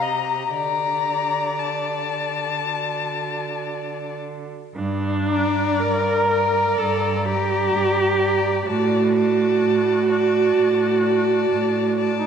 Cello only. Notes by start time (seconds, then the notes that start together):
Already playing: C3
0.55 D3
4.75 G2
5.82 G2
6.79 G2
7.73 G2
8.67 A2
9.62 A2
10.55 A2
11.50 A2